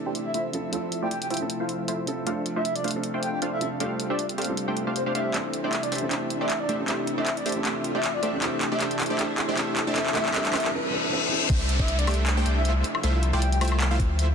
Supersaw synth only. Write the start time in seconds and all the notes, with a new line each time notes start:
0.06 A3 D4 G4 C5 G5
0.34 A3 E4 F4 C5 E5
0.73 A3 E4 F4 C5 E5
1.02 A3 E4 F4 C5 D5
1.30 A3 E4 F4 C5 E5
1.60 A3 E4 F4 C5 F5
1.88 A3 E4 F4 C5 E5
2.27 A3 D4 F4 C5 F5
2.56 A3 D4 F4 C5 E5
2.84 A3 D4 F4 C5 F5
3.14 A3 D4 F4 C5 G5
3.42 A3 D4 F4 C5 F5
3.80 A3 D4 G4 C5 F5
4.10 A3 D4 G4 C5 E5
4.38 A3 D4 G4 C5 F5
4.68 A3 D4 G4 C5 G5
4.87 A3 D4 G4 C5 F5
5.06 A3 D4 G4 C5 F5
5.15 A3 D4 G4 C5 F5
5.34 A3 D4 G4 C5 E5
5.64 A3 D4 G4 C5 D5
5.92 A3 D4 G4 C5 E5
6.11 A3 D4 G4 C5 E5
6.41 A3 D4 G4 C5 D5
6.69 A3 D4 G4 C5 E5
6.88 A3 D4 G4 C5 E5
7.18 A3 D4 G4 C5 D5
7.46 A3 D4 G4 C5 E5
7.65 A3 D4 G4 C5 E5
7.95 A3 D4 G4 C5 D5
8.23 A3 D4 G4 C5 E5
8.42 A3 D4 G4 C5 E5
8.72 A3 D4 G4 C5 D5
8.80 A3 D4 G4 C5 E5
9.10 A3 D4 G4 C5 D5
9.19 A3 D4 G4 C5 E5
9.49 A3 D4 G4 C5 D5
9.57 A3 D4 G4 C5 E5
9.87 A3 D4 G4 C5 D5
9.96 A3 D4 G4 C5 E5
10.15 A3 D4 G4 C5 E5
10.34 A3 D4 G4 C5 E5
10.54 A3 D4 G4 C5 E5
11.50 A3 D4 G4 C5 E5
11.79 A3 D4 G4 C5 D5
12.07 A3 D4 G4 C5 E5
12.37 A3 D4 G4 C5 G5
12.65 A3 E4 F4 C5 E5
13.04 A3 E4 F4 C5 E5
13.33 A3 E4 F4 C5 D5
13.61 A3 E4 F4 C5 E5
13.91 A3 E4 F4 C5 F5
14.19 A3 E4 F4 C5 E5